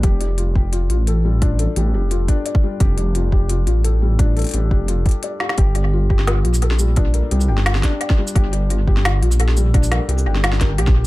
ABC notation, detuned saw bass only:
X:1
M:4/4
L:1/8
Q:"Swing 16ths" 1/4=173
K:Fmix
V:1 name="Detuned saw bass" clef=bass
F,,,3 F,,,2 A,,,3- | A,,, z A,,, F,,,2 z3 | F,,,3 F,,,2 A,,,3- | A,,, z A,,, F,,,2 z3 |
G,,,3 G,,,2 B,,,3- | B,,, z C,, G,,,2 z3 | G,,,3 G,,,2 B,,,3- | B,,, z C,, G,,,3 B,,,2 |]